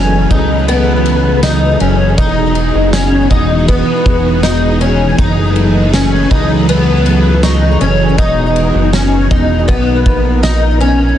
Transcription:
Already playing: F#1 E3 F#3 C#4 G#4 A4 B4 G#5
0.30 C#2 D#4, kick, ride
0.68 B3, ride
1.06 ride
1.43 D#4, snare, ride, tambourine
1.80 F#1 C#4, ride
2.18 E1 E3 B3 D#4 F#4, kick, ride
2.55 ride
2.75 F#1
2.93 C#4, snare, ride, tambourine
3.30 E1 D#4, kick, ride
3.68 B3, kick, ride
4.06 E1, kick, ride
4.43 D#4, snare, ride, tambourine
4.81 C#4, ride
5.18 F#1 E3 F#3 D#4 A4 B4, kick, ride
5.56 ride
5.93 C#4, snare, ride, tambourine
6.31 C#2 D#4, kick, ride
6.69 B3, ride
7.06 ride
7.43 D#4 C#6, snare, ride, tambourine
7.81 F#1 C#4, ride
8.18 E1 E3 B3 D#4 F#4, kick, ride
8.56 ride
8.75 F#1
8.93 C#4, snare, ride, tambourine
9.31 E1 D#4, kick, ride
9.68 B1 B3 A#4, kick, ride
10.06 A#1, kick, ride
10.43 D#4, snare, ride, tambourine
10.81 C#4, ride

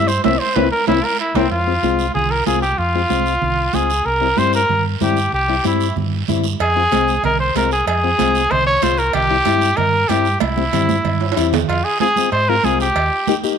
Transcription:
Already playing: G2
0.08 C5, short guiro
0.24 C2 A#3 C4 E4 E5, high conga, high timbale, long guiro
0.40 C5
0.55 C2 A#3 C4 E4 B4, high conga, high timbale, long guiro
0.72 A#4
0.87 C2 A#3 C4 E4, high conga, high timbale, long guiro
1.04 A#4
1.20 E4
1.34 C2 A#3 C4 E4, high conga, high timbale, long guiro
1.51 F2 F4, high conga, long guiro
1.67 G#3 C4 F4
1.83 C2 G#3 C4 F4, high conga, short guiro
1.99 short guiro
2.15 C2 G#4, high conga, low conga, long guiro
2.31 A#4
2.46 C2 G#3 C4 F4 G#4, high conga, short guiro
2.62 G4, short guiro
2.78 F2 F4, high conga, long guiro
2.95 G#3 C4 F4
3.09 C2 G#3 C4 F4, high conga, short guiro
3.26 short guiro
3.42 C2, high conga, low conga, long guiro
3.73 C#2 G#3 C4 F4 G#4, high conga, short guiro
3.90 short guiro
4.05 C2 A#4, high conga, long guiro
4.20 G3 C4 E4
4.37 G2 G3 C4 E4 C5, high conga, short guiro
4.53 A#4, short guiro
4.69 G2, high conga, low conga, long guiro
5.00 G2 G3 C4 E4 G4, high conga, low conga, short guiro
5.17 short guiro
5.32 C2 G4, high conga, long guiro
5.48 G3 C4 E4
5.64 G2 G3 C4 E4, high conga, short guiro
5.80 short guiro
5.96 G2, high conga, low conga, long guiro
6.28 G2 G3 C4 E4, high conga, low conga, short guiro
6.44 short guiro
6.60 F2 G#4, cowbell, high conga, long guiro
6.76 G#3 C4 F4
6.92 C2 G#3 C4 G#4, cowbell, high conga, short guiro
7.08 short guiro
7.23 C2 A#4, cowbell, high conga, low conga, long guiro
7.40 C5
7.55 C2 G#3 C4 F4 A#4, cowbell, high conga, short guiro
7.71 G#4, short guiro
7.87 F2 G#4, cowbell, high conga, long guiro
8.03 G#3 C4 F4
8.18 C2 G#3 C4 F4, cowbell, high conga, short guiro
8.35 short guiro
8.51 C2 C5, cowbell, high conga, low conga, long guiro
8.67 C#5
8.82 C2 G#3 C4 F4 C5, cowbell, high conga, short guiro
8.98 A#4, short guiro
9.13 C2 G4, cowbell, high conga, low conga, long guiro
9.30 G3 C4 E4
9.45 G2 G3 C4 E4, cowbell, high conga, short guiro
9.61 short guiro
9.77 G2 A#4, cowbell, high conga, low conga, long guiro
10.09 G2 G3 C4 E4 G4, cowbell, high conga, short guiro
10.25 short guiro
10.40 C2 E4, cowbell, high conga, long guiro
10.57 G3 C4 E4, high conga
10.73 G2 G3 C4 E4, cowbell, low conga, short guiro
10.89 high conga, short guiro
11.05 G2, cowbell, low conga, long guiro
11.21 high timbale
11.32 high timbale
11.36 E2 G3 C4 E4, cowbell, short guiro
11.53 low conga, low timbale, short guiro
11.68 F2 F4, cowbell, long guiro
11.85 G#4
12.00 G#3 C4 F4 G#4, high conga, short guiro
12.16 G#3 C4 F4, high conga, short guiro
12.32 G#2 C5, cowbell, long guiro
12.49 G#3 C4 F4 A#4
12.63 C2 G#3 C4 F4 G#4, high conga, short guiro
12.80 G4, short guiro
12.95 D#2, cowbell, long guiro
13.27 A#3 D#4 G4, high conga, short guiro
13.43 A#3 D#4 G4, short guiro

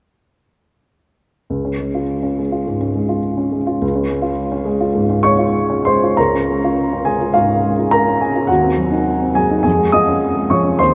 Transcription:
1.50 C#2
1.65 C#4
1.79 G#3
1.95 F4
2.23 C#4
2.39 G#3
2.52 F4
2.67 G#2
2.81 C#4
2.95 G#3
3.09 F4
3.37 C#4
3.52 G#3
3.67 F4
3.82 C#2
3.95 C#4
4.09 G#3
4.22 F4
4.52 C#4
4.65 G#3
4.81 F4
4.95 G#2
5.10 C#4
5.23 G#3 C#5 C#6
5.38 F4
5.70 C#4
5.85 G#3 C5 C6
6.03 F4
6.17 C#2 A#4 A#5
6.35 C#4
6.50 G#3
6.64 F4
6.93 C#4
7.05 G#3 G#4 G#5
7.21 F4
7.34 G#2 F4 F5
7.48 C#4
7.64 G#3
7.79 F4
7.91 A#4 A#5
8.08 C#4
8.21 G#3 G#4 G#5
8.35 F4
8.47 D#2 F#4 F#5
8.64 C4
8.78 F#3
8.92 D#4
9.22 C4
9.35 F#3 G#4 G#5
9.51 D#4
9.63 F2 G#4 G#5
9.78 G#3
9.92 F3 D#5 D#6
10.08 C#4
10.37 G#3
10.50 F3 C#5 C#6
10.64 C#4
10.79 D#2 C5 C6

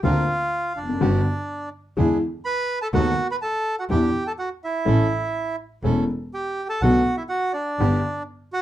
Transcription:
0.03 D2 D3 A#3 C4 D4 F4 A#4 F5
0.76 F1 D4 D5
0.83 E2
0.89 F2
0.94 F#2
1.01 G1 G2 D3 G3 B3 F#4 G4
1.97 E2 D3 E3 G#3 B3 D4 E4 G#4
2.45 B4 B5
2.82 A4 A5
2.93 D#2 D#3 A3 B3 D#4 F#4 A4 F#5
3.31 B4 B5
3.42 A4 A5
3.79 F#4 F#5
3.89 E2 E3 B3 D4 E4 G4 G5
4.27 A4 A5
4.39 F#4 F#5
4.64 E4 E5
4.85 A1 A2 E3 A3 C#4 E4 A4
5.83 E1 E2 E3 A3 C#4 E4 A4
6.34 G4 G5
6.69 A4 A5
6.81 B1 B2 D3 A3 B3 D4 F#4 A4 F#5
7.17 E4 E5
7.29 F#4 F#5
7.53 D4 D5
7.79 G1 G2 D3 G3 B3 D4 G4
8.53 F#4 F#5

